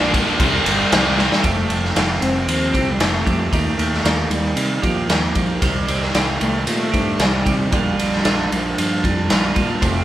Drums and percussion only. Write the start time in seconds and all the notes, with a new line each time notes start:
0.14 kick, ride
0.40 kick, ride
0.66 ride
0.92 snare, ride
1.19 snare
1.32 snare
1.44 kick, ride
1.70 ride
1.85 snare
1.96 snare, ride
2.22 ride
2.48 ride
2.74 kick, ride
3.00 snare, ride
3.27 kick, ride
3.53 kick, ride
3.79 ride
3.93 snare
4.05 snare, ride
4.31 ride
4.57 ride
4.83 kick, ride
5.09 snare, ride
5.35 kick, ride
5.62 kick, ride
5.88 ride
6.02 snare
6.14 snare, ride
6.41 ride
6.67 ride
6.94 kick, ride
7.19 snare, ride
7.46 kick, ride
7.72 kick, ride
7.99 ride
8.12 snare
8.25 snare, ride
8.52 ride
8.78 ride
9.04 kick, ride
9.30 snare, ride
9.56 kick, ride
9.82 kick, ride